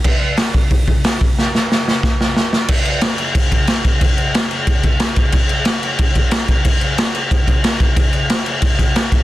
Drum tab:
CC |x-------|--------|xxxxxxxx|xxxxxxxx|
HH |--o-o-o-|--------|--------|--------|
SD |--o---o-|oooooooo|--o---o-|--o---o-|
BD |o--ooo-o|----o---|o---oo-o|o---oo-o|

CC |xxxxxxxx|xxxxxxxx|xxxxxxxx|
HH |--------|--------|--------|
SD |--o---o-|--o---o-|--o---o-|
BD |o---oo-o|o---oo-o|o---oo-o|